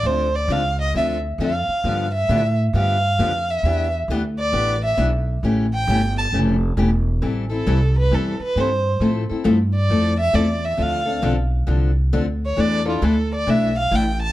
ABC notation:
X:1
M:4/4
L:1/8
Q:"Swing" 1/4=134
K:Aphr
V:1 name="Violin"
c d f _e =e z f2- | f e2 z f3 e- | e z2 d2 e z2 | z g2 a z4 |
[K:Am] z A2 B A B c2 | z3 d2 e d e | f2 z4 z ^c | d F A d e f g a |]
V:2 name="Steel-string acoustic guitar"
[D,F,CDA] z [D,F,CDA] z [D,F,CDA] z [D,F,CDA] z | [D,F,=B,DG] z [D,F,B,DG] z [D,F,B,DG] z [D,F,B,DG] z | [E,=B,DG] z [E,B,DG] z [E,B,DG] z [E,B,DG] z | [^C,E,A,^CG] z [C,E,A,CG] z [C,E,A,CG] z [C,E,A,CG] z |
[K:Am] [E,G,CEA] [CEA] [E,G,CEA] z [E,G,CEA] z [E,G,CEA] z | [F,A,CEA] [CEA] [F,A,CEA] z [F,A,CEA] z [F,A,CEA] z | [D,F,CDA] [CDA] [D,F,CDA] z [D,F,CDA] z [D,F,CDA] z | [E,A,DEA] [DEA] [E,A,DEA] z [E,A,DEA] z [E,A,DEA] z |]
V:3 name="Upright bass" clef=bass
D,,2 ^C,,2 D,,2 F,, z | G,,2 A,,2 G,,2 F,,2 | E,,2 D,,2 A,,,2 =B,,,2 | A,,,2 G,,,2 F,,,2 E,,,2 |
[K:Am] A,,,2 C,,2 E,, z G,,2 | A,, z G,,2 F,,2 E,,2 | D,,2 B,,,2 C,,2 D,,2 | E,,2 D,,2 B,,,2 A,,,2 |]